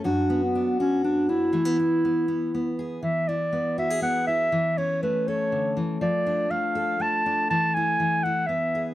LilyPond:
<<
  \new Staff \with { instrumentName = "Clarinet" } { \time 3/4 \key e \mixolydian \tempo 4 = 121 d'8. b8. cis'8 d'8 e'8~ | e'2~ e'8 r8 | e''8 d''4 e''8 fis''8 e''8~ | e''8 cis''8 b'8 cis''4 r8 |
d''4 f''4 a''4 | a''8 gis''4 fis''8 e''8. r16 | }
  \new Staff \with { instrumentName = "Steel-string acoustic guitar" } { \time 3/4 \key e \mixolydian << { fis'8 b8 d'8 fis'8 d'8 d'8 | a16 b16 b8 b8 b8 b8 gis'8 | r8 e'4 fis'16 gis'8. e'8 | r8 cis'4 a'4. |
r8 d'4 a'4 d'8 | r8 e'8 r8 e'4 gis'8 | } \\ { fis,2. | e2. | e4 b4 b4 | e4 a4 d8 e8 |
f4 a4 a4 | e4 e4 b4 | } >> }
>>